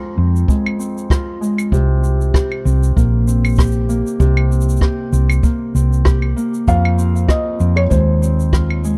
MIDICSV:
0, 0, Header, 1, 5, 480
1, 0, Start_track
1, 0, Key_signature, -4, "minor"
1, 0, Tempo, 618557
1, 1339, Time_signature, 4, 2, 24, 8
1, 6968, End_track
2, 0, Start_track
2, 0, Title_t, "Felt piano"
2, 0, Program_c, 0, 0
2, 5186, Note_on_c, 0, 77, 96
2, 5652, Note_on_c, 0, 75, 78
2, 5677, Note_off_c, 0, 77, 0
2, 6023, Note_on_c, 0, 73, 82
2, 6041, Note_off_c, 0, 75, 0
2, 6062, Note_off_c, 0, 73, 0
2, 6132, Note_on_c, 0, 72, 74
2, 6824, Note_off_c, 0, 72, 0
2, 6968, End_track
3, 0, Start_track
3, 0, Title_t, "Harp"
3, 0, Program_c, 1, 46
3, 0, Note_on_c, 1, 41, 69
3, 0, Note_on_c, 1, 51, 69
3, 0, Note_on_c, 1, 56, 63
3, 0, Note_on_c, 1, 60, 57
3, 0, Note_on_c, 1, 65, 61
3, 133, Note_off_c, 1, 60, 0
3, 136, Note_on_c, 1, 60, 60
3, 369, Note_off_c, 1, 56, 0
3, 378, Note_on_c, 1, 56, 63
3, 611, Note_off_c, 1, 60, 0
3, 614, Note_on_c, 1, 60, 56
3, 852, Note_off_c, 1, 65, 0
3, 855, Note_on_c, 1, 65, 68
3, 1085, Note_off_c, 1, 56, 0
3, 1094, Note_on_c, 1, 56, 62
3, 1337, Note_on_c, 1, 48, 78
3, 1342, Note_on_c, 1, 67, 59
3, 1378, Note_off_c, 1, 41, 0
3, 1378, Note_off_c, 1, 56, 0
3, 1570, Note_off_c, 1, 60, 0
3, 1573, Note_on_c, 1, 60, 58
3, 1683, Note_off_c, 1, 51, 0
3, 1814, Note_off_c, 1, 67, 0
3, 1817, Note_on_c, 1, 67, 57
3, 2055, Note_off_c, 1, 60, 0
3, 2058, Note_on_c, 1, 60, 62
3, 2299, Note_on_c, 1, 58, 62
3, 2537, Note_off_c, 1, 60, 0
3, 2540, Note_on_c, 1, 60, 56
3, 2777, Note_off_c, 1, 67, 0
3, 2780, Note_on_c, 1, 67, 65
3, 2813, Note_off_c, 1, 65, 0
3, 3015, Note_off_c, 1, 58, 0
3, 3018, Note_on_c, 1, 58, 64
3, 3246, Note_off_c, 1, 48, 0
3, 3255, Note_on_c, 1, 48, 73
3, 3259, Note_off_c, 1, 67, 0
3, 3262, Note_on_c, 1, 67, 63
3, 3494, Note_off_c, 1, 60, 0
3, 3497, Note_on_c, 1, 60, 61
3, 3733, Note_off_c, 1, 67, 0
3, 3736, Note_on_c, 1, 67, 63
3, 3972, Note_off_c, 1, 60, 0
3, 3976, Note_on_c, 1, 60, 63
3, 4214, Note_off_c, 1, 58, 0
3, 4217, Note_on_c, 1, 58, 64
3, 4460, Note_off_c, 1, 60, 0
3, 4463, Note_on_c, 1, 60, 59
3, 4695, Note_off_c, 1, 67, 0
3, 4699, Note_on_c, 1, 67, 63
3, 4935, Note_off_c, 1, 58, 0
3, 4938, Note_on_c, 1, 58, 60
3, 5178, Note_on_c, 1, 41, 78
3, 5183, Note_on_c, 1, 65, 63
3, 5218, Note_off_c, 1, 48, 0
3, 5414, Note_off_c, 1, 60, 0
3, 5417, Note_on_c, 1, 60, 61
3, 5651, Note_off_c, 1, 65, 0
3, 5654, Note_on_c, 1, 65, 62
3, 5894, Note_off_c, 1, 60, 0
3, 5897, Note_on_c, 1, 60, 61
3, 6132, Note_on_c, 1, 56, 62
3, 6178, Note_off_c, 1, 67, 0
3, 6373, Note_off_c, 1, 60, 0
3, 6376, Note_on_c, 1, 60, 57
3, 6621, Note_off_c, 1, 65, 0
3, 6624, Note_on_c, 1, 65, 70
3, 6854, Note_off_c, 1, 56, 0
3, 6863, Note_on_c, 1, 56, 61
3, 6968, Note_off_c, 1, 41, 0
3, 6968, Note_off_c, 1, 56, 0
3, 6968, Note_off_c, 1, 58, 0
3, 6968, Note_off_c, 1, 60, 0
3, 6968, Note_off_c, 1, 65, 0
3, 6968, End_track
4, 0, Start_track
4, 0, Title_t, "Fingered electric bass"
4, 0, Program_c, 2, 33
4, 136, Note_on_c, 2, 41, 81
4, 339, Note_off_c, 2, 41, 0
4, 1334, Note_on_c, 2, 36, 86
4, 1785, Note_off_c, 2, 36, 0
4, 2059, Note_on_c, 2, 36, 90
4, 2260, Note_off_c, 2, 36, 0
4, 2301, Note_on_c, 2, 34, 92
4, 3115, Note_off_c, 2, 34, 0
4, 3259, Note_on_c, 2, 36, 90
4, 3708, Note_off_c, 2, 36, 0
4, 3977, Note_on_c, 2, 36, 85
4, 4179, Note_off_c, 2, 36, 0
4, 4459, Note_on_c, 2, 36, 71
4, 4908, Note_off_c, 2, 36, 0
4, 5182, Note_on_c, 2, 41, 81
4, 5630, Note_off_c, 2, 41, 0
4, 5899, Note_on_c, 2, 41, 84
4, 6100, Note_off_c, 2, 41, 0
4, 6138, Note_on_c, 2, 39, 87
4, 6954, Note_off_c, 2, 39, 0
4, 6968, End_track
5, 0, Start_track
5, 0, Title_t, "Drums"
5, 281, Note_on_c, 9, 82, 54
5, 358, Note_off_c, 9, 82, 0
5, 375, Note_on_c, 9, 36, 99
5, 386, Note_on_c, 9, 82, 47
5, 453, Note_off_c, 9, 36, 0
5, 463, Note_off_c, 9, 82, 0
5, 515, Note_on_c, 9, 75, 72
5, 593, Note_off_c, 9, 75, 0
5, 622, Note_on_c, 9, 82, 79
5, 700, Note_off_c, 9, 82, 0
5, 759, Note_on_c, 9, 82, 51
5, 836, Note_off_c, 9, 82, 0
5, 855, Note_on_c, 9, 36, 107
5, 861, Note_on_c, 9, 37, 97
5, 868, Note_on_c, 9, 82, 44
5, 933, Note_off_c, 9, 36, 0
5, 939, Note_off_c, 9, 37, 0
5, 945, Note_off_c, 9, 82, 0
5, 1109, Note_on_c, 9, 82, 75
5, 1187, Note_off_c, 9, 82, 0
5, 1229, Note_on_c, 9, 75, 71
5, 1235, Note_on_c, 9, 82, 58
5, 1307, Note_off_c, 9, 75, 0
5, 1312, Note_off_c, 9, 82, 0
5, 1335, Note_on_c, 9, 36, 94
5, 1348, Note_on_c, 9, 82, 43
5, 1413, Note_off_c, 9, 36, 0
5, 1425, Note_off_c, 9, 82, 0
5, 1583, Note_on_c, 9, 82, 75
5, 1660, Note_off_c, 9, 82, 0
5, 1715, Note_on_c, 9, 82, 50
5, 1793, Note_off_c, 9, 82, 0
5, 1816, Note_on_c, 9, 36, 99
5, 1818, Note_on_c, 9, 37, 86
5, 1830, Note_on_c, 9, 82, 49
5, 1894, Note_off_c, 9, 36, 0
5, 1896, Note_off_c, 9, 37, 0
5, 1908, Note_off_c, 9, 82, 0
5, 1953, Note_on_c, 9, 75, 59
5, 2030, Note_off_c, 9, 75, 0
5, 2069, Note_on_c, 9, 82, 67
5, 2146, Note_off_c, 9, 82, 0
5, 2198, Note_on_c, 9, 82, 63
5, 2275, Note_off_c, 9, 82, 0
5, 2302, Note_on_c, 9, 36, 90
5, 2311, Note_on_c, 9, 82, 47
5, 2380, Note_off_c, 9, 36, 0
5, 2388, Note_off_c, 9, 82, 0
5, 2544, Note_on_c, 9, 82, 81
5, 2622, Note_off_c, 9, 82, 0
5, 2675, Note_on_c, 9, 75, 69
5, 2677, Note_on_c, 9, 82, 25
5, 2707, Note_off_c, 9, 82, 0
5, 2707, Note_on_c, 9, 82, 27
5, 2734, Note_off_c, 9, 82, 0
5, 2734, Note_on_c, 9, 82, 29
5, 2752, Note_off_c, 9, 75, 0
5, 2759, Note_off_c, 9, 82, 0
5, 2759, Note_on_c, 9, 82, 34
5, 2781, Note_on_c, 9, 36, 109
5, 2784, Note_off_c, 9, 82, 0
5, 2784, Note_on_c, 9, 37, 82
5, 2784, Note_on_c, 9, 82, 37
5, 2794, Note_off_c, 9, 82, 0
5, 2794, Note_on_c, 9, 82, 49
5, 2816, Note_off_c, 9, 82, 0
5, 2816, Note_on_c, 9, 82, 42
5, 2848, Note_off_c, 9, 82, 0
5, 2848, Note_on_c, 9, 82, 46
5, 2858, Note_off_c, 9, 36, 0
5, 2861, Note_off_c, 9, 37, 0
5, 2881, Note_off_c, 9, 82, 0
5, 2881, Note_on_c, 9, 82, 44
5, 2959, Note_off_c, 9, 82, 0
5, 3024, Note_on_c, 9, 82, 73
5, 3102, Note_off_c, 9, 82, 0
5, 3156, Note_on_c, 9, 82, 61
5, 3234, Note_off_c, 9, 82, 0
5, 3259, Note_on_c, 9, 36, 100
5, 3262, Note_on_c, 9, 82, 46
5, 3337, Note_off_c, 9, 36, 0
5, 3340, Note_off_c, 9, 82, 0
5, 3392, Note_on_c, 9, 75, 75
5, 3469, Note_off_c, 9, 75, 0
5, 3507, Note_on_c, 9, 82, 78
5, 3577, Note_off_c, 9, 82, 0
5, 3577, Note_on_c, 9, 82, 70
5, 3639, Note_off_c, 9, 82, 0
5, 3639, Note_on_c, 9, 82, 52
5, 3643, Note_off_c, 9, 82, 0
5, 3643, Note_on_c, 9, 82, 53
5, 3696, Note_off_c, 9, 82, 0
5, 3696, Note_on_c, 9, 82, 43
5, 3735, Note_on_c, 9, 36, 95
5, 3735, Note_on_c, 9, 37, 73
5, 3774, Note_off_c, 9, 82, 0
5, 3812, Note_off_c, 9, 36, 0
5, 3812, Note_off_c, 9, 37, 0
5, 3983, Note_on_c, 9, 82, 76
5, 4060, Note_off_c, 9, 82, 0
5, 4109, Note_on_c, 9, 75, 73
5, 4123, Note_on_c, 9, 82, 53
5, 4187, Note_off_c, 9, 75, 0
5, 4200, Note_off_c, 9, 82, 0
5, 4216, Note_on_c, 9, 36, 109
5, 4217, Note_on_c, 9, 82, 47
5, 4294, Note_off_c, 9, 36, 0
5, 4295, Note_off_c, 9, 82, 0
5, 4469, Note_on_c, 9, 82, 85
5, 4547, Note_off_c, 9, 82, 0
5, 4600, Note_on_c, 9, 82, 53
5, 4678, Note_off_c, 9, 82, 0
5, 4695, Note_on_c, 9, 37, 105
5, 4705, Note_on_c, 9, 36, 107
5, 4713, Note_on_c, 9, 82, 46
5, 4773, Note_off_c, 9, 37, 0
5, 4783, Note_off_c, 9, 36, 0
5, 4791, Note_off_c, 9, 82, 0
5, 4829, Note_on_c, 9, 75, 67
5, 4906, Note_off_c, 9, 75, 0
5, 4950, Note_on_c, 9, 82, 85
5, 5027, Note_off_c, 9, 82, 0
5, 5076, Note_on_c, 9, 82, 53
5, 5154, Note_off_c, 9, 82, 0
5, 5181, Note_on_c, 9, 36, 97
5, 5182, Note_on_c, 9, 82, 49
5, 5259, Note_off_c, 9, 36, 0
5, 5260, Note_off_c, 9, 82, 0
5, 5318, Note_on_c, 9, 75, 72
5, 5395, Note_off_c, 9, 75, 0
5, 5423, Note_on_c, 9, 82, 83
5, 5500, Note_off_c, 9, 82, 0
5, 5557, Note_on_c, 9, 82, 52
5, 5635, Note_off_c, 9, 82, 0
5, 5653, Note_on_c, 9, 36, 101
5, 5654, Note_on_c, 9, 37, 86
5, 5663, Note_on_c, 9, 82, 45
5, 5731, Note_off_c, 9, 36, 0
5, 5731, Note_off_c, 9, 37, 0
5, 5740, Note_off_c, 9, 82, 0
5, 5899, Note_on_c, 9, 82, 73
5, 5977, Note_off_c, 9, 82, 0
5, 6028, Note_on_c, 9, 75, 77
5, 6106, Note_off_c, 9, 75, 0
5, 6139, Note_on_c, 9, 36, 103
5, 6139, Note_on_c, 9, 82, 57
5, 6216, Note_off_c, 9, 82, 0
5, 6217, Note_off_c, 9, 36, 0
5, 6387, Note_on_c, 9, 82, 82
5, 6464, Note_off_c, 9, 82, 0
5, 6517, Note_on_c, 9, 82, 49
5, 6595, Note_off_c, 9, 82, 0
5, 6618, Note_on_c, 9, 36, 102
5, 6618, Note_on_c, 9, 37, 77
5, 6628, Note_on_c, 9, 82, 40
5, 6695, Note_off_c, 9, 36, 0
5, 6696, Note_off_c, 9, 37, 0
5, 6705, Note_off_c, 9, 82, 0
5, 6755, Note_on_c, 9, 75, 69
5, 6833, Note_off_c, 9, 75, 0
5, 6865, Note_on_c, 9, 82, 85
5, 6942, Note_off_c, 9, 82, 0
5, 6968, End_track
0, 0, End_of_file